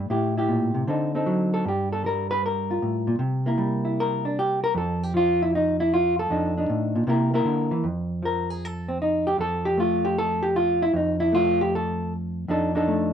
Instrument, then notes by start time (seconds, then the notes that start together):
hollow-body jazz guitar
0.10 A2 E4 G4
0.37 E4 G4
0.49 A#2
0.75 C3
0.88 D3 C4 D#4 A4
1.15 C4 D#4 A4
1.26 F#3
1.54 A4
1.65 G2 G4
1.93 A4
2.04 G3 A#4
2.31 B4
2.46 A#4
2.71 F4
2.82 A2
3.07 A#2
3.19 C3
3.46 A#3 E4 A#4
3.58 G3
3.85 E4
4.00 A#4
4.25 D4
4.39 G4
4.64 A#4
4.75 F2 A4
5.03 G4
5.14 F3 F4
5.42 E4
5.55 D#4
5.80 E4
5.94 F4
6.19 A4
6.30 F2 D4 D#4
6.57 D4 D#4
6.70 A2
6.95 A#2
7.07 C3 A#3 E4 A#4
7.34 A#3 E4 A#4
7.45 D3
7.71 E3
7.84 F2
8.23 F3 A#4
8.50 G#4
8.65 A4
8.88 C4
9.02 D#4
9.27 G4
9.38 F2 A4
9.65 G4
9.77 A3 F4
10.05 G4
10.18 A4
10.43 G4
10.56 F4
10.82 E4
10.94 F2 D#4
11.20 E4
11.32 A3 F4
11.61 G4
11.75 A4
12.48 F2 D4 D#4 A4
12.75 D4 D#4 A4
12.88 A3